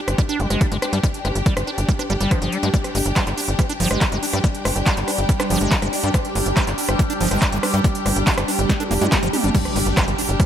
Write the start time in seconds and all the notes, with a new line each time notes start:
Already playing: D4 G4 G5
0.08 G1, cross-stick, closed hi-hat
0.18 G3, kick, closed hi-hat
0.29 D4, closed hi-hat
0.40 G1 G3, closed hi-hat
0.50 G1 G#3, cross-stick, closed hi-hat
0.61 G3, kick, closed hi-hat
0.72 G1 G#3, closed hi-hat
0.82 D4, cross-stick, closed hi-hat
0.93 G2 G3, closed hi-hat
1.03 G3, kick, closed hi-hat
1.14 closed hi-hat
1.25 G1 G#3, cross-stick, closed hi-hat
1.35 G1, closed hi-hat
1.46 G3, kick, closed hi-hat
1.57 G1, cross-stick, closed hi-hat
1.67 D4, closed hi-hat
1.78 G1, closed hi-hat
1.89 G3, kick, closed hi-hat
1.99 D4, cross-stick, closed hi-hat
2.10 G1 G3, closed hi-hat
2.21 G1 G3, closed hi-hat
2.31 F3, kick, cross-stick, closed hi-hat
2.42 G1 F3, closed hi-hat
2.52 G3, closed hi-hat
2.63 G2 G#3, closed hi-hat
2.74 G3 D4, kick, closed hi-hat
2.84 cross-stick, closed hi-hat
2.95 G1 G#3, open hi-hat
3.06 G1, closed hi-hat
3.16 G3, kick, cross-stick, clap, closed hi-hat
3.27 G1, clap, closed hi-hat
3.38 D4, open hi-hat
3.48 G1, closed hi-hat
3.59 G3, kick, cross-stick, closed hi-hat
3.69 D4, closed hi-hat
3.80 G1 F3, open hi-hat
3.91 G1 G#3, cross-stick, closed hi-hat
4.01 G3, kick, clap, closed hi-hat
4.12 G1 G#3, closed hi-hat
4.23 D4, open hi-hat
4.33 G2 G3, cross-stick, closed hi-hat
4.44 G3, kick, closed hi-hat
4.55 closed hi-hat
4.65 G1 G#3, cross-stick, open hi-hat
4.76 G1, closed hi-hat
4.86 G3, kick, clap, closed hi-hat
4.97 G1, clap, closed hi-hat
5.08 D4, cross-stick, open hi-hat
5.18 G1, closed hi-hat
5.29 G3, kick, closed hi-hat
5.40 D4, cross-stick, clap, closed hi-hat
5.50 G1 F3, open hi-hat
5.61 G1 G#3, closed hi-hat
5.72 G3, kick, clap, closed hi-hat
5.82 G1 G#3, cross-stick, closed hi-hat
5.93 D4, open hi-hat
6.04 G2 G3, closed hi-hat
6.14 G3, kick, cross-stick, closed hi-hat
6.25 closed hi-hat
6.35 G1 G#3, open hi-hat
6.46 G1, closed hi-hat
6.57 G3, kick, cross-stick, clap, closed hi-hat
6.67 G1, clap, closed hi-hat
6.78 D4, open hi-hat
6.89 G1, cross-stick, closed hi-hat
6.99 G3, kick, closed hi-hat
7.10 D4, closed hi-hat
7.21 G1 F3, open hi-hat
7.31 G1 G#3, cross-stick, closed hi-hat
7.42 G3, kick, clap, closed hi-hat
7.52 G1 G#3, closed hi-hat
7.63 D4, cross-stick, open hi-hat
7.74 G2 G3, closed hi-hat
7.84 G3, kick, closed hi-hat
7.95 closed hi-hat
8.06 G1 G#3, cross-stick, open hi-hat
8.16 G1, closed hi-hat
8.27 G3, kick, clap, closed hi-hat
8.38 G1, cross-stick, clap, closed hi-hat
8.48 D4, open hi-hat
8.59 G1, closed hi-hat
8.69 G3, kick, snare, closed hi-hat, swell
8.80 D4, closed hi-hat, high tom
8.91 F1 A#3, open hi-hat
9.01 G2 G#3, closed hi-hat, mid tom
9.12 G#3, kick, snare, clap, closed hi-hat
9.23 G1 F3, closed hi-hat
9.33 G4, mid tom, open hi-hat
9.44 G1 G3, closed hi-hat, mid tom
9.55 G3 D4, kick, closed hi-hat, crash, impact
9.65 cross-stick, closed hi-hat
9.76 G1 G#3, open hi-hat
9.86 G1, closed hi-hat
9.97 G3, kick, cross-stick, clap, closed hi-hat
10.08 G1, closed hi-hat
10.18 D4, open hi-hat
10.29 G1, closed hi-hat
10.40 G3, kick, cross-stick, closed hi-hat